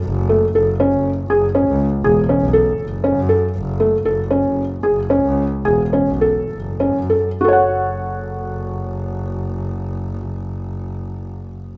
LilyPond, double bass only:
\new Staff \with { instrumentName = "Double bass" } { \clef bass \time 7/4 \key fis \minor \tempo 4 = 110 fis,,4 fis,,8 r16 fis,,8. fis,,8. cis,8 r16 e,,8 r16 b,,8. fis,,8. fis,8 r16 | fis,,4 fis,,8 r16 fis,,8. fis,,8. cis,8 r16 e,,8 r16 b,,8. fis,,8. fis,8 r16 | fis,,1.~ fis,,4 | }